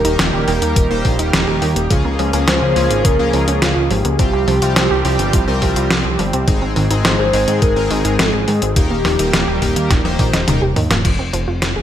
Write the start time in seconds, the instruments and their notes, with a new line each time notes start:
Already playing: analog synth pad D#3 G3 A#3 G4, soft synth lead A#4
0.05 analog synth bass D#1, analog polysynth D#3 A#3 D#4 G4 A#4, synth arpeggio sound D#4, closed hi-hat
0.19 analog synth bass D#1, synth arpeggio sound D#3, soft synth lead A#4, snare, closed hi-hat
0.33 analog synth bass D#1, synth arpeggio sound G4
0.48 analog synth bass D#1, synth arpeggio sound D#3, analog polysynth D#3 A#3 D#4 G4 A#4, open hi-hat
0.62 analog synth bass D#2, synth arpeggio sound A#3, closed hi-hat
0.76 analog synth bass D#1, synth arpeggio sound D#3, kick, closed hi-hat
0.91 analog synth bass D#1, analog polysynth D#3 A#3 D#4 G4 C5, synth arpeggio sound A#3
1.05 analog synth bass A#1, synth arpeggio sound D#3, kick, open hi-hat
1.19 analog synth bass D#1, analog polysynth D#3 A#3 D#4 G4 A#4, synth arpeggio sound D#4, closed hi-hat
1.33 analog synth bass D#1, synth arpeggio sound D#3, analog polysynth D#3 A#3 D#4 G4 A#4, snare, closed hi-hat
1.48 analog synth bass D#1, synth arpeggio sound G4
1.62 analog synth bass D#2, synth arpeggio sound D#3, open hi-hat
1.76 analog synth bass D#1, synth arpeggio sound A#3, closed hi-hat
1.90 analog synth bass C#2, analog polysynth C#3 A#3 C#4 F4 G#4, analog synth pad F3 A#3 C#4 G#4, synth arpeggio sound F3, kick, closed hi-hat
2.05 analog synth bass C#2, synth arpeggio sound A#3
2.19 analog synth bass C#2, synth arpeggio sound F3, open hi-hat
2.33 analog synth bass C#2, analog polysynth C#3 A#3 C#4 F4 G#4, synth arpeggio sound C#4, closed hi-hat
2.48 analog synth bass C#2, synth arpeggio sound F3, soft synth lead C5, snare, closed hi-hat
2.62 analog synth bass C#2, synth arpeggio sound F4
2.76 analog synth bass C#2, analog polysynth C#3 A#3 C#4 F4 G#4, synth arpeggio sound F3, open hi-hat
2.91 analog synth bass G#1, synth arpeggio sound A#3, closed hi-hat
3.05 analog synth bass C#2, synth arpeggio sound F3, soft synth lead A#4, kick, closed hi-hat
3.19 analog synth bass C#2, analog polysynth C#3 A#3 C#4 F4 A#4, synth arpeggio sound A#3
3.33 analog synth bass C#2, synth arpeggio sound F3, open hi-hat
3.48 analog synth bass C#2, synth arpeggio sound C#4, closed hi-hat
3.62 analog synth bass C#2, analog polysynth C#3 A#3 C#4 F4 G#4, synth arpeggio sound F3, soft synth lead F4, snare, closed hi-hat
3.76 analog synth bass C#2, synth arpeggio sound F4
3.91 analog synth bass G#1, synth arpeggio sound F3, soft synth lead G4, open hi-hat
4.05 analog synth bass C#2, synth arpeggio sound A#3, closed hi-hat
4.19 analog synth bass C2, analog polysynth C3 G3 C4 F4 G4, synth arpeggio sound F3, analog synth pad F3 G3 C4 G4, kick, closed hi-hat
4.33 analog synth bass C2, synth arpeggio sound C4
4.48 analog synth bass C2, synth arpeggio sound F3, open hi-hat
4.62 analog synth bass C2, analog polysynth C3 G3 C4 F4 G4, synth arpeggio sound F4, closed hi-hat
4.76 analog synth bass C2, synth arpeggio sound F3, snare, closed hi-hat
4.91 analog synth bass C2, synth arpeggio sound G4
5.05 analog synth bass C2, analog polysynth C3 G3 C4 F4 G4, synth arpeggio sound F3, open hi-hat
5.19 analog synth bass G1, synth arpeggio sound C4, closed hi-hat
5.33 analog synth bass C2, synth arpeggio sound F3, kick, closed hi-hat
5.48 analog synth bass C2, analog polysynth C3 G3 C4 F4 A#4, synth arpeggio sound C4
5.62 analog synth bass C2, synth arpeggio sound F3, kick, open hi-hat
5.76 analog synth bass C2, synth arpeggio sound F4, closed hi-hat
5.90 analog synth bass C2, analog polysynth C3 G3 C4 F4 G4, synth arpeggio sound F3, snare, closed hi-hat
6.05 analog synth bass C2, synth arpeggio sound G4
6.19 analog synth bass G1, synth arpeggio sound F3, open hi-hat
6.33 analog synth bass C2, synth arpeggio sound C4, closed hi-hat
6.48 analog synth bass G#1, analog polysynth G#2 G#3 C4 D#4 G#4, synth arpeggio sound D#3, analog synth pad D#3 G#3 G#4, kick, closed hi-hat
6.62 analog synth bass G#1, synth arpeggio sound C4
6.76 analog synth bass G#1, synth arpeggio sound D#3, open hi-hat
6.91 analog synth bass G#1, analog polysynth G#2 G#3 C4 D#4 G#4, synth arpeggio sound D#4, closed hi-hat
7.05 analog synth bass G#1, synth arpeggio sound D#3, soft synth lead C5, snare, closed hi-hat
7.19 analog synth bass G#1, synth arpeggio sound G#4
7.33 analog synth bass G#1, analog polysynth G#2 G#3 C4 D#4 G#4, synth arpeggio sound D#3, open hi-hat
7.48 analog synth bass G#2, synth arpeggio sound C4, closed hi-hat
7.62 analog synth bass G#1, synth arpeggio sound D#3, soft synth lead A#4, kick, closed hi-hat
7.76 analog synth bass G#1, analog polysynth G#2 G#3 C4 D#4 A#4, synth arpeggio sound C4
7.90 analog synth bass G#1, synth arpeggio sound D#3, open hi-hat
8.05 analog synth bass G#1, synth arpeggio sound D#4, closed hi-hat
8.19 analog synth bass G#1, analog polysynth G#2 G#3 C4 D#4 F4, synth arpeggio sound D#3, soft synth lead G#4, snare, closed hi-hat
8.33 analog synth bass G#1, synth arpeggio sound G#4
8.48 analog synth bass G#2, synth arpeggio sound D#3, open hi-hat
8.62 analog synth bass G#1, synth arpeggio sound C4, closed hi-hat
8.76 analog synth bass D#1, synth arpeggio sound D#3, analog polysynth D#3 A#3 D#4 G4 A#4, analog synth pad G3 A#3 G4, soft synth lead G4, kick, closed hi-hat
8.91 analog synth bass D#1, synth arpeggio sound A#3
9.05 analog synth bass D#1, synth arpeggio sound D#3, snare, open hi-hat
9.19 analog synth bass D#1, analog polysynth D#3 A#3 D#4 G4 A#4, synth arpeggio sound D#4, closed hi-hat
9.33 analog synth bass D#1, synth arpeggio sound D#3, snare, closed hi-hat
9.48 analog synth bass D#1, synth arpeggio sound G4
9.62 analog synth bass D#1, synth arpeggio sound D#3, analog polysynth D#3 A#3 D#4 G4 A#4, kick, open hi-hat
9.76 analog synth bass D#2, synth arpeggio sound A#3, closed hi-hat
9.91 analog synth bass D#1, synth arpeggio sound D#3, kick, snare, closed hi-hat
10.05 analog synth bass D#1, analog polysynth D#3 A#3 D#4 G4 C5, synth arpeggio sound A#3, high tom
10.19 analog synth bass A#1, synth arpeggio sound D#3, kick, open hi-hat
10.33 analog synth bass D#1, synth arpeggio sound D#4, snare, closed hi-hat
10.48 analog synth bass D#1, synth arpeggio sound D#3, analog polysynth D#3 A#3 D#4 G4 A#4, closed hi-hat, mid tom
10.62 analog synth bass D#1, synth arpeggio sound G4
10.76 analog synth bass D#2, synth arpeggio sound D#3, mid tom, open hi-hat
10.90 analog synth bass D#1, synth arpeggio sound A#3, snare, closed hi-hat
11.05 analog synth bass F1, synth arpeggio sound F3, kick, closed hi-hat, crash
11.19 analog synth bass F1, synth arpeggio sound C4
11.33 analog synth bass F1, synth arpeggio sound F3, closed hi-hat
11.48 analog synth bass F1, synth arpeggio sound F4
11.62 analog synth bass F1, synth arpeggio sound F3, snare, closed hi-hat
11.76 analog synth bass F1, synth arpeggio sound G#4